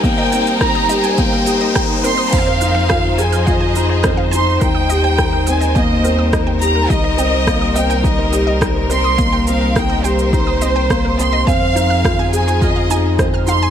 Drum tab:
CC |----------------|x---------------|----------------|----------------|
SH |x-xxx-xxx-x-x-x-|x-x-x-xxx-x-x-x-|x-x-x-xxx-x-x-x-|x-x-x-xxx-x-x-x-|
SD |----r-------r---|----r-------r---|----r-------r---|----r-------r---|
BD |o---o---o---o---|o---o---o---o---|o---o---o---o---|o---o---o---o---|

CC |----------------|----------------|
SH |x-x-x-xxx-x-x-x-|x-x-x-xxx-x-x-x-|
SD |----r-------r---|----r-------r---|
BD |o---o---o---o---|o---o---o---o---|